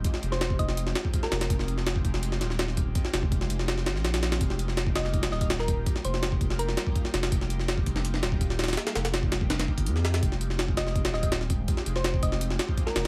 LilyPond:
<<
  \new Staff \with { instrumentName = "Synth pluck" } { \time 4/4 \key f \minor \tempo 4 = 165 r8. c''8. ees''8 r4 r16 bes'8.~ | bes'8. r2. r16 | r1 | r4. ees''8 r8 ees''16 ees''16 r16 bes'8 r16 |
r8 c''8 r4 bes'4. r8 | r1 | r1 | r4. ees''8 r8 ees''16 ees''16 r4 |
r8. c''8. ees''8 r4 r16 bes'8. | }
  \new Staff \with { instrumentName = "Analog synth pad" } { \time 4/4 \key f \minor <aes c' ees' f' g'>8. <aes c' ees' f' g'>2.~ <aes c' ees' f' g'>16 | <aes c' ees' f' g'>8. <aes c' ees' f' g'>2.~ <aes c' ees' f' g'>16 | <aes c' ees' f' g'>8. <aes c' ees' f' g'>2~ <aes c' ees' f' g'>8. <aes c' ees' f' g'>8 | <g bes ees' f' g'>8. <g bes ees' f' g'>2.~ <g bes ees' f' g'>16 |
<g bes ees' f' g'>8. <g bes ees' f' g'>2.~ <g bes ees' f' g'>16 | <g bes ees' f' g'>8. <g bes ees' f' g'>2.~ <g bes ees' f' g'>16 | <g bes ees' f' g'>8. <g bes ees' f' g'>2.~ <g bes ees' f' g'>16 | <aes c' ees' f' g'>8. <aes c' ees' f' g'>2.~ <aes c' ees' f' g'>16 |
<aes c' ees' f' g'>8. <aes c' ees' f' g'>2.~ <aes c' ees' f' g'>16 | }
  \new Staff \with { instrumentName = "Sub bass" } { \clef bass \time 4/4 \key f \minor r8 f,,4 f,,4 r4 f,,8 | f,,4. f,,4 ees,,4. | r8 f,,4 f,,4 g,,16 bes,,4~ bes,,16 | f,,4. f,,4 ees,,4. |
r8 f,,4 f,,4 r4 f,,8 | f,,4. f,,4 ees,,4. | r8 f,,4 f,,4 r16 g,,16 f,4 | f,,4. f,,4 ees,,4. |
r8 f,,4 f,,4 r4 f,,8 | }
  \new DrumStaff \with { instrumentName = "Drums" } \drummode { \time 4/4 <hh bd>16 sn16 hh16 sn16 <hh sn>16 bd16 <hh bd>16 sn16 hh16 sn16 <hh sn>16 bd16 <hh bd>16 sn16 <hh sn>16 <hh sn>16 | <hh bd>16 sn16 hh16 sn16 <hh sn>16 bd16 <hh bd>16 sn16 hh16 sn16 <hh sn>16 sn16 <hh sn>16 sn16 <hh bd>8 | <hh bd>16 sn16 <hh sn>16 bd16 <hh bd>16 sn16 hh16 sn16 <hh sn>16 sn16 <hh sn>16 sn16 <hh sn>16 <hh sn>16 <hh sn>16 <hh sn>16 | <hh bd>16 sn16 hh16 sn16 <hh sn>16 bd16 <hh sn>16 sn16 <hh bd>16 <hh sn>16 sn16 <hh bd>16 <hh sn>16 sn16 <hh bd>8 |
<hh bd>16 sn16 hh16 sn16 <hh sn>16 bd16 <hh bd>16 sn16 hh16 sn16 <hh sn>16 bd16 <hh bd>16 sn16 <hh sn>16 <hh sn>16 | <hh bd>16 sn16 hh16 sn16 <hh sn>16 bd16 <hh bd>16 sn16 hh16 sn16 <hh sn>16 bd16 <hh bd>16 sn16 <hh sn>32 <hh sn>32 <hh sn>32 <hh sn>32 | <hh sn>16 <hh sn>16 <hh sn>16 <hh sn>16 <hh sn>16 bd16 <hh sn>16 bd16 <hh sn>16 <hh sn>16 bd16 <hh bd>16 hh16 sn16 <hh sn>16 <hh sn>16 | <hh bd>16 sn16 hh16 sn16 <hh sn>16 bd16 <hh sn>16 sn16 <hh bd>16 <hh sn>16 sn16 <hh bd>16 <hh sn>16 sn16 <hh bd>8 |
<hh bd>16 sn16 hh16 sn16 <hh sn>16 bd16 <hh bd>16 sn16 hh16 sn16 <hh sn>16 bd16 <hh bd>16 sn16 <hh sn>8 | }
>>